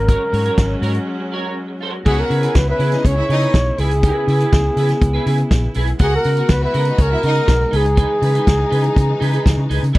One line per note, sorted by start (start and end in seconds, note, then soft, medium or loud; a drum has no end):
0.00 0.15 G#1 medium
0.00 2.03 F#3 medium
0.00 2.03 G#3 medium
0.00 2.03 C#4 medium
0.00 0.83 A#4 loud
0.08 0.21 F#4 medium
0.08 0.22 A#4 medium
0.08 0.22 C#5 medium
0.08 kick loud
0.08 closed hi-hat medium
0.32 0.49 G#2 loud
0.32 0.43 F#4 medium
0.32 0.43 A#4 medium
0.32 0.44 C#5 medium
0.32 open hi-hat medium
0.46 0.56 F#4 soft
0.46 0.56 A#4 medium
0.46 0.55 C#5 medium
0.46 closed hi-hat soft
0.58 0.73 G#1 loud
0.58 kick loud
0.58 snare loud
0.58 closed hi-hat medium
0.70 muted clean electric guitar stroke medium
0.82 0.98 G#2 medium
0.82 0.95 F#4 medium
0.82 0.95 A#4 loud
0.82 0.94 C#5 medium
0.82 open hi-hat soft
0.95 muted clean electric guitar stroke soft
0.95 closed hi-hat soft
1.08 muted clean electric guitar stroke soft
1.20 muted clean electric guitar stroke soft
1.32 1.45 F#4 medium
1.32 1.44 A#4 medium
1.32 1.43 C#5 medium
1.44 1.55 F#4 soft
1.44 1.55 A#4 soft
1.44 1.54 C#5 medium
1.69 muted clean electric guitar stroke soft
1.81 2.01 F#4 medium
1.81 1.93 A#4 medium
1.81 1.92 C#5 loud
1.93 muted clean electric guitar stroke soft
2.05 2.21 C#2 loud
2.05 5.96 C#3 medium
2.05 3.77 B3 medium
2.05 3.77 C#4 medium
2.05 2.18 E4 medium
2.05 5.97 E4 medium
2.05 2.26 F#4 medium
2.05 2.21 G#4 loud
2.05 3.77 G#4 medium
2.05 2.19 G#4 medium
2.05 2.20 B4 medium
2.05 2.27 F#5 loud
2.05 kick loud
2.05 crash medium
2.20 2.58 A#4 medium
2.30 2.46 C#3 loud
2.30 2.40 E4 medium
2.30 2.41 G#4 medium
2.30 2.41 B4 medium
2.30 open hi-hat medium
2.42 2.54 E4 medium
2.42 2.53 F#4 medium
2.42 2.53 G#4 medium
2.42 2.53 B4 medium
2.42 2.53 F#5 medium
2.42 closed hi-hat soft
2.55 2.71 C#2 loud
2.55 2.68 B4 medium
2.55 kick loud
2.55 snare loud
2.55 closed hi-hat medium
2.67 2.78 E4 medium
2.67 3.08 B4 loud
2.67 2.78 E5 medium
2.67 muted clean electric guitar stroke soft
2.79 2.95 C#3 loud
2.79 2.92 E4 medium
2.79 2.93 G#4 medium
2.79 2.91 B4 medium
2.79 open hi-hat soft
2.92 3.02 D#4 medium
2.92 3.02 D#5 medium
2.92 muted clean electric guitar stroke soft
2.92 snare soft
2.92 closed hi-hat soft
3.04 3.20 C#2 medium
3.04 3.15 C#4 loud
3.04 3.15 C#5 loud
3.04 3.81 C#5 loud
3.04 muted clean electric guitar stroke soft
3.04 kick loud
3.04 closed hi-hat medium
3.16 3.27 E4 medium
3.16 3.27 E5 medium
3.16 muted clean electric guitar stroke soft
3.29 3.45 C#3 loud
3.29 3.49 D#4 loud
3.29 3.42 E4 medium
3.29 3.42 G#4 medium
3.29 3.40 B4 loud
3.29 3.50 D#5 loud
3.29 open hi-hat medium
3.41 3.53 E4 soft
3.41 3.52 G#4 medium
3.41 3.52 B4 medium
3.41 closed hi-hat soft
3.54 3.70 B1 medium
3.54 kick loud
3.54 snare loud
3.54 closed hi-hat medium
3.66 muted clean electric guitar stroke soft
3.78 4.10 C#2 medium
3.78 5.98 B3 medium
3.78 3.91 E4 medium
3.78 3.91 G#4 medium
3.78 5.76 G#4 medium
3.78 3.90 B4 medium
3.78 open hi-hat medium
3.91 muted clean electric guitar stroke soft
3.91 closed hi-hat soft
4.03 4.23 E4 medium
4.03 4.24 G#4 medium
4.03 4.24 B4 medium
4.03 kick loud
4.03 closed hi-hat medium
4.28 4.43 C#3 loud
4.28 4.38 E4 medium
4.28 4.39 G#4 medium
4.28 4.39 B4 medium
4.28 open hi-hat medium
4.40 4.51 E4 medium
4.40 4.51 G#4 medium
4.40 4.51 B4 medium
4.40 closed hi-hat soft
4.53 4.68 C#2 medium
4.53 kick loud
4.53 snare loud
4.53 closed hi-hat medium
4.65 muted clean electric guitar stroke medium
4.76 4.92 C#3 loud
4.76 4.90 E4 medium
4.76 4.90 G#4 medium
4.76 4.89 B4 medium
4.76 open hi-hat medium
4.89 muted clean electric guitar stroke soft
4.89 snare soft
4.89 closed hi-hat soft
5.01 5.17 C#2 medium
5.01 muted clean electric guitar stroke medium
5.01 kick loud
5.01 closed hi-hat medium
5.14 5.25 E4 medium
5.14 5.26 G#4 medium
5.14 5.27 B4 medium
5.26 5.42 C#3 loud
5.26 5.36 E4 medium
5.26 5.37 G#4 medium
5.26 5.37 B4 medium
5.26 open hi-hat medium
5.38 muted clean electric guitar stroke soft
5.38 closed hi-hat soft
5.51 5.67 A#1 medium
5.51 kick loud
5.51 snare loud
5.51 closed hi-hat medium
5.64 muted clean electric guitar stroke soft
5.74 5.91 B1 medium
5.74 5.88 E4 medium
5.74 5.88 G#4 loud
5.74 5.87 B4 loud
5.74 open hi-hat medium
5.87 muted clean electric guitar stroke soft
5.87 closed hi-hat soft
5.99 6.16 C#2 loud
5.99 9.91 G#3 medium
5.99 6.13 B3 medium
5.99 7.71 B3 medium
5.99 6.13 F#4 loud
5.99 7.71 F#4 medium
5.99 6.21 F#4 loud
5.99 6.13 G#4 loud
5.99 6.14 A#4 medium
5.99 6.21 F#5 loud
5.99 kick loud
5.99 closed hi-hat medium
6.16 6.53 A#4 loud
6.24 6.41 C#3 loud
6.24 6.35 B3 medium
6.24 6.35 F#4 medium
6.24 6.35 A#4 medium
6.24 open hi-hat medium
6.36 6.48 B3 soft
6.36 6.48 F#4 medium
6.36 6.47 A#4 medium
6.36 6.48 F#5 medium
6.36 closed hi-hat soft
6.49 6.65 C#2 loud
6.49 6.63 B4 loud
6.49 kick loud
6.49 snare loud
6.49 closed hi-hat medium
6.61 6.72 E4 medium
6.61 7.04 B4 loud
6.61 6.72 E5 medium
6.61 muted clean electric guitar stroke medium
6.73 6.90 C#3 loud
6.73 6.87 B3 medium
6.73 6.86 F#4 medium
6.73 6.85 A#4 loud
6.73 open hi-hat medium
6.85 6.97 D#4 medium
6.85 6.97 D#5 medium
6.85 muted clean electric guitar stroke soft
6.85 closed hi-hat soft
6.98 7.14 C#2 loud
6.98 7.09 C#4 loud
6.98 7.78 A#4 loud
6.98 7.09 C#5 loud
6.98 muted clean electric guitar stroke soft
6.98 kick loud
6.98 closed hi-hat medium
7.10 7.22 E4 medium
7.10 7.22 E5 medium
7.10 muted clean electric guitar stroke medium
7.22 7.39 C#3 loud
7.22 7.35 B3 medium
7.22 7.44 D#4 loud
7.22 7.34 F#4 medium
7.22 7.33 A#4 medium
7.22 7.44 D#5 loud
7.22 open hi-hat medium
7.34 7.46 B3 medium
7.34 7.46 F#4 medium
7.34 7.45 A#4 medium
7.34 closed hi-hat soft
7.48 7.64 B1 loud
7.48 kick loud
7.48 snare loud
7.48 closed hi-hat medium
7.59 muted clean electric guitar stroke soft
7.71 8.04 C#2 medium
7.71 9.92 E3 medium
7.71 7.85 D#4 loud
7.71 9.92 D#4 loud
7.71 7.84 G#4 loud
7.71 7.83 B4 loud
7.71 open hi-hat medium
7.76 9.72 G#4 loud
7.84 muted clean electric guitar stroke medium
7.84 closed hi-hat soft
7.96 8.10 D#4 medium
7.96 8.10 G#4 medium
7.96 8.10 B4 medium
7.96 kick loud
7.96 closed hi-hat medium
8.21 8.38 C#3 loud
8.21 8.32 D#4 medium
8.21 8.32 G#4 medium
8.21 8.32 B4 medium
8.21 open hi-hat medium
8.34 8.45 D#4 soft
8.34 8.45 G#4 medium
8.34 8.44 B4 medium
8.34 closed hi-hat soft
8.47 8.63 C#2 loud
8.47 kick loud
8.47 snare loud
8.47 closed hi-hat medium
8.58 muted clean electric guitar stroke soft
8.70 8.87 C#3 loud
8.70 8.84 D#4 medium
8.70 8.83 G#4 medium
8.70 8.81 B4 medium
8.70 open hi-hat medium
8.82 muted clean electric guitar stroke medium
8.82 closed hi-hat soft
8.95 9.12 C#3 loud
8.95 muted clean electric guitar stroke soft
8.95 kick loud
8.95 closed hi-hat medium
9.07 muted clean electric guitar stroke soft
9.20 9.37 C#3 loud
9.20 9.33 D#4 loud
9.20 9.32 G#4 medium
9.20 9.31 B4 loud
9.20 open hi-hat medium
9.32 9.44 D#4 medium
9.32 9.43 G#4 medium
9.32 9.43 B4 medium
9.32 closed hi-hat soft
9.46 9.54 C#2 loud
9.46 kick loud
9.46 snare loud
9.46 closed hi-hat medium
9.58 9.65 C#3 loud
9.58 muted clean electric guitar stroke soft
9.69 9.78 C#2 loud
9.69 9.83 D#4 medium
9.69 9.82 G#4 loud
9.69 9.80 B4 medium
9.69 open hi-hat medium
9.82 9.91 C#3 loud
9.82 muted clean electric guitar stroke soft
9.82 closed hi-hat soft
9.93 9.98 C#2 loud
9.93 9.98 C#3 medium
9.93 9.98 B3 medium
9.93 9.98 E4 medium
9.93 9.98 E4 loud
9.93 9.98 G#4 medium
9.93 9.98 B4 medium
9.93 kick loud
9.93 crash loud